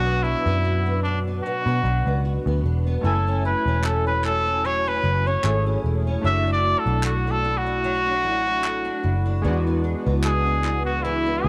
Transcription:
0.00 0.34 B1 medium
0.00 1.44 B2 medium
0.00 2.99 F#3 medium
0.00 3.00 B3 medium
0.00 0.24 D4 medium
0.00 3.01 D4 medium
0.00 0.24 F#4 loud
0.00 3.01 F#4 medium
0.06 0.45 B3 medium
0.23 1.04 D4 medium
0.23 1.02 E4 medium
0.46 1.40 F#2 loud
0.46 0.85 B3 medium
0.65 2.25 F#4 medium
0.86 1.26 B3 medium
1.03 1.19 D4 medium
1.03 1.84 D4 medium
1.27 1.67 B3 medium
1.43 3.14 B2 medium
1.43 2.19 F#4 medium
1.66 1.80 B2 medium
1.66 2.06 B3 medium
1.84 2.01 B1 medium
1.84 2.65 D4 medium
2.06 2.38 C#2 medium
2.06 2.46 B3 medium
2.25 3.48 F#4 medium
2.46 2.60 D2 medium
2.46 2.86 B3 medium
2.64 2.96 E1 medium
2.64 3.14 D4 medium
2.87 3.13 B3 medium
3.01 3.53 F#1 loud
3.01 4.64 F#3 medium
3.01 5.39 A3 medium
3.01 5.39 C#4 medium
3.01 5.40 E4 medium
3.01 3.41 A4 medium
3.06 5.41 G#5 medium
3.27 3.67 C#4 medium
3.45 4.24 E4 medium
3.45 3.87 B4 medium
3.66 5.00 E1 medium
3.66 4.06 C#4 medium
3.84 5.44 A4 medium
3.84 4.06 A4 medium
3.84 clap medium
4.06 4.46 C#4 medium
4.06 4.23 B4 medium
4.24 5.04 E4 medium
4.24 4.67 A4 medium
4.24 clap medium
4.47 4.85 C#4 medium
4.65 6.24 F#3 medium
4.65 4.89 C#5 loud
4.87 5.26 C#4 medium
4.87 5.28 B4 medium
5.04 5.36 F#1 medium
5.04 5.85 E4 medium
5.27 5.65 C#4 medium
5.27 5.66 C#5 medium
5.43 5.76 G#1 loud
5.43 6.20 A3 medium
5.43 6.24 C#4 medium
5.43 6.24 E4 soft
5.43 6.25 G#4 medium
5.43 7.04 A4 medium
5.43 clap medium
5.66 6.06 C#4 medium
5.84 6.16 E1 medium
5.84 6.50 E4 medium
6.07 6.33 C#4 medium
6.21 6.74 F#1 medium
6.21 7.83 F#3 medium
6.21 9.39 A3 medium
6.21 9.39 D4 medium
6.21 9.40 E4 medium
6.26 9.41 F#4 medium
6.26 6.50 E5 loud
6.47 6.86 D4 medium
6.53 6.80 D5 loud
6.64 7.44 E4 medium
6.79 7.05 A4 medium
6.86 8.24 B1 medium
6.86 7.27 D4 medium
7.03 7.33 F#4 medium
7.03 8.63 A4 medium
7.03 clap medium
7.27 7.66 D4 medium
7.27 7.59 A4 medium
7.44 8.24 E4 medium
7.57 9.57 F#4 loud
7.66 8.06 D4 medium
7.84 9.44 F#3 medium
8.06 8.46 D4 medium
8.24 8.88 A1 loud
8.24 9.03 E4 medium
8.46 8.84 D4 medium
8.64 9.53 A4 medium
8.64 clap medium
8.85 9.25 D4 medium
9.03 9.45 F#1 medium
9.03 9.83 E4 medium
9.26 9.66 D4 medium
9.42 9.93 E2 loud
9.42 11.03 E3 medium
9.42 11.49 G#3 medium
9.42 11.49 B3 medium
9.42 11.49 D4 medium
9.47 11.49 F#4 medium
9.67 10.06 B3 medium
9.84 10.64 D4 medium
10.06 11.40 C#2 medium
10.06 10.46 B3 medium
10.24 11.49 G#4 medium
10.24 10.82 G#4 medium
10.24 clap medium
10.46 10.86 B3 medium
10.64 11.44 D4 medium
10.64 clap medium
10.85 11.26 B3 soft
10.85 11.04 F#4 medium
11.03 11.49 E3 loud
11.03 11.45 E4 medium
11.26 11.49 B3 medium
11.44 11.49 D2 medium
11.44 11.49 D4 medium
11.44 11.49 G#4 loud

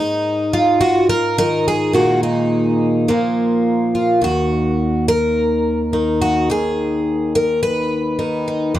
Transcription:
0.00 1.91 G#2 medium
0.00 0.80 D#4 medium
0.53 1.38 F4 medium
0.81 1.09 F#4 loud
1.09 1.37 A#4 loud
1.38 1.92 D#3 medium
1.38 1.66 A#4 loud
1.68 1.94 G#4 medium
1.93 3.07 A#2 medium
1.93 3.08 D#3 soft
1.93 3.09 G#3 soft
1.93 3.09 A#3 soft
1.93 2.22 F#4 medium
2.23 3.09 D#4 medium
3.08 4.23 A#2 medium
3.08 4.20 F3 soft
3.08 4.20 A#3 soft
3.95 4.20 F4 soft
4.22 6.48 D#2 medium
4.22 5.08 F#4 medium
5.08 6.21 A#4 loud
5.93 8.18 D#3 soft
6.22 6.50 F#4 medium
6.50 8.74 D#2 medium
6.50 7.35 G#4 medium
7.35 7.62 A#4 medium
7.63 8.75 B4 loud
8.19 8.75 D#3 medium
8.48 8.72 D#4 soft
8.75 8.79 F2 medium

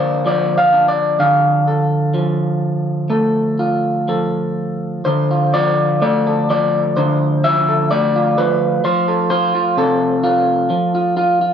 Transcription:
0.00 1.19 D3 medium
0.00 0.25 F3 medium
0.00 1.20 A#3 soft
0.00 0.72 C5 medium
0.00 0.26 D5 medium
0.26 2.13 F3 medium
0.26 0.57 D5 medium
0.58 0.88 F5 medium
0.73 1.67 D4 soft
0.88 1.19 D5 medium
1.20 5.00 D3 medium
1.20 5.06 F5 medium
1.68 3.09 A4 soft
2.14 4.07 F3 medium
3.10 5.00 A3 medium
3.10 4.08 A4 soft
3.59 5.00 F4 soft
4.08 5.53 F3 medium
4.08 5.01 A4 soft
5.05 6.96 D3 medium
5.05 6.25 C5 medium
5.31 8.15 F4 soft
5.54 6.49 F3 medium
5.54 6.01 D5 medium
6.02 7.92 A3 medium
6.02 6.49 D5 medium
6.27 6.96 A4 soft
6.50 7.43 F3 medium
6.50 7.44 D5 medium
6.97 8.79 D3 medium
6.97 7.67 C5 medium
7.44 8.37 F3 medium
7.44 7.90 E5 loud
7.69 8.38 A4 soft
7.91 11.42 A3 medium
7.91 8.84 D5 medium
8.16 8.79 F4 soft
8.38 8.83 F3 medium
8.38 8.84 B4 medium
8.84 10.69 F3 medium
8.84 9.29 C5 medium
9.08 9.78 A4 soft
9.30 9.54 F4 medium
9.30 10.70 C5 medium
9.55 10.22 F4 soft
9.77 10.70 C3 medium
9.77 11.54 A4 medium
10.24 10.93 F4 medium
10.70 11.54 F3 medium
10.95 11.16 F4 soft
11.17 11.40 F4 medium
11.41 11.54 F4 soft

